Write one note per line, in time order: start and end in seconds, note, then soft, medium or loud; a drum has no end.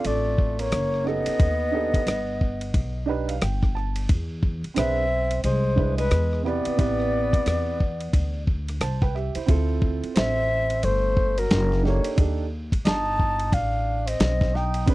0.00 0.66 C4 medium
0.00 0.66 D4 medium
0.00 0.67 F4 medium
0.00 0.67 A4 medium
0.05 0.69 A1 medium
0.05 0.61 A3 medium
0.05 0.62 D5 medium
0.05 ride medium
0.38 kick medium
0.59 1.08 A#3 medium
0.59 1.09 C#5 medium
0.59 ride medium
0.72 1.24 F#1 medium
0.72 cross-stick loud
0.72 hi-hat pedal soft
0.72 ride medium
0.94 cross-stick soft
1.04 3.08 B3 medium
1.04 1.47 C#4 medium
1.04 1.47 D#4 medium
1.04 1.48 G4 soft
1.04 1.49 A4 medium
1.04 3.09 D#5 loud
1.04 cross-stick soft
1.26 muted upright bass stroke soft
1.26 ride medium
1.40 1.91 D#2 loud
1.40 kick loud
1.40 ride medium
1.71 1.98 D4 medium
1.71 1.99 D#4 medium
1.71 1.99 G4 medium
1.71 2.00 A4 medium
1.94 muted upright bass stroke soft
1.94 kick medium
1.94 ride medium
2.07 2.71 G1 medium
2.07 cross-stick loud
2.07 hi-hat pedal soft
2.07 ride medium
2.41 kick medium
2.61 ride medium
2.74 3.38 B1 medium
2.74 kick medium
2.74 ride medium
3.06 3.33 D4 medium
3.06 3.33 D#4 medium
3.06 3.34 G4 medium
3.06 3.34 B4 medium
3.06 3.27 D#5 medium
3.28 3.41 F5 medium
3.28 ride medium
3.42 4.06 G1 medium
3.42 3.73 G5 medium
3.42 cross-stick loud
3.42 hi-hat pedal soft
3.42 ride medium
3.63 kick medium
3.63 cross-stick soft
3.75 4.07 A5 medium
3.75 cross-stick soft
3.96 ride medium
4.09 4.61 E2 loud
4.09 kick loud
4.09 ride medium
4.43 kick medium
4.64 muted upright bass stroke soft
4.64 ride medium
4.74 5.41 B1 medium
4.74 5.01 C4 medium
4.74 5.40 C4 medium
4.74 5.02 D4 medium
4.74 5.02 G#4 medium
4.74 5.03 B4 medium
4.74 5.41 E5 loud
4.74 cross-stick loud
4.74 hi-hat pedal medium
4.74 ride medium
5.31 ride medium
5.44 6.08 C2 medium
5.44 5.94 G#3 medium
5.44 5.95 C5 medium
5.44 ride medium
5.76 6.02 D4 medium
5.76 6.03 E4 medium
5.76 6.04 G#4 medium
5.76 6.04 B4 medium
5.76 kick medium
5.98 6.41 G#3 medium
5.98 6.42 B4 medium
5.98 ride medium
6.11 6.63 E2 loud
6.11 cross-stick loud
6.11 hi-hat pedal soft
6.11 ride medium
6.33 cross-stick soft
6.43 6.75 C3 medium
6.43 8.43 B3 medium
6.43 6.76 E4 medium
6.43 6.77 G4 medium
6.43 6.78 B4 medium
6.43 8.43 D5 medium
6.43 cross-stick soft
6.65 muted upright bass stroke soft
6.65 ride medium
6.77 7.31 A1 medium
6.77 7.74 C3 medium
6.77 7.74 E4 medium
6.77 7.75 G4 medium
6.77 7.75 B4 medium
6.77 kick loud
6.77 ride medium
7.00 cross-stick soft
7.33 muted upright bass stroke soft
7.33 kick medium
7.33 ride medium
7.46 8.10 E2 medium
7.46 cross-stick loud
7.46 hi-hat pedal soft
7.46 ride medium
7.80 kick medium
8.01 ride medium
8.13 8.78 D2 medium
8.13 kick medium
8.13 ride medium
8.47 kick medium
8.68 cross-stick soft
8.68 ride medium
8.81 9.33 C2 medium
8.81 9.01 C5 soft
8.81 9.01 A5 medium
8.81 cross-stick loud
8.81 hi-hat pedal soft
8.81 ride medium
9.02 9.14 B4 medium
9.02 9.14 G5 medium
9.02 kick medium
9.02 cross-stick soft
9.15 9.35 G4 medium
9.15 9.35 E5 medium
9.15 cross-stick soft
9.35 9.46 E4 soft
9.35 9.67 C5 medium
9.35 muted upright bass stroke soft
9.35 ride medium
9.46 10.00 D2 medium
9.46 10.43 C4 medium
9.46 10.44 E4 medium
9.46 10.45 F4 medium
9.46 10.45 A4 medium
9.46 kick loud
9.46 ride medium
9.82 kick medium
10.03 muted upright bass stroke soft
10.03 ride medium
10.15 10.80 A1 medium
10.15 10.85 C4 medium
10.15 10.86 E5 loud
10.15 snare medium
10.15 hi-hat pedal soft
10.15 ride medium
10.70 ride medium
10.83 11.47 G1 medium
10.83 11.39 A3 medium
10.83 11.40 C5 medium
10.83 ride medium
11.17 kick medium
11.38 11.84 F#3 medium
11.38 11.85 A#4 medium
11.38 ride medium
11.51 12.03 F#1 loud
11.51 snare loud
11.51 hi-hat pedal soft
11.51 ride medium
11.72 snare soft
11.82 12.16 A#3 medium
11.82 12.15 D4 medium
11.82 12.16 D#4 medium
11.82 12.17 G4 medium
11.82 12.18 A4 medium
11.82 12.17 C#5 medium
11.82 snare soft
12.04 muted upright bass stroke soft
12.04 ride medium
12.16 12.70 D#2 medium
12.16 12.43 D4 medium
12.16 12.44 D#4 medium
12.16 12.44 G4 medium
12.16 12.45 A4 medium
12.16 kick loud
12.16 ride medium
12.72 muted upright bass stroke soft
12.72 kick medium
12.72 ride medium
12.85 13.49 G1 medium
12.85 13.54 D#4 medium
12.85 13.55 A5 loud
12.85 snare loud
12.85 hi-hat pedal soft
12.85 ride medium
13.19 kick medium
13.40 ride medium
13.52 14.17 A1 medium
13.52 14.09 D4 medium
13.52 14.10 F5 medium
13.52 kick medium
13.52 ride medium
14.07 14.56 C4 medium
14.07 14.58 D#5 medium
14.07 ride medium
14.20 14.84 B1 medium
14.20 snare loud
14.20 hi-hat pedal soft
14.20 ride medium
14.41 kick medium
14.41 snare soft
14.54 14.88 D#4 medium
14.54 14.89 G5 medium
14.54 snare soft
14.74 ride medium
14.86 14.95 E2 medium
14.86 14.95 C4 medium
14.86 14.95 D4 medium
14.86 14.95 G#4 medium
14.86 14.95 B4 medium
14.86 kick loud
14.86 ride medium